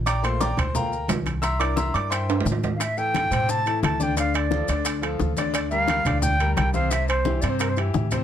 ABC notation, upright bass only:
X:1
M:4/4
L:1/8
Q:1/4=175
K:Aphr
V:1 name="Upright bass" clef=bass
B,,,3 D,,3 C,,2- | C,,3 G,,3 A,,2- | A,,3 A,,3 D,,2- | D,,3 D,,3 D,,2- |
D,,3 D,,3 C,,2- | C,,3 G,,3 A,,2 |]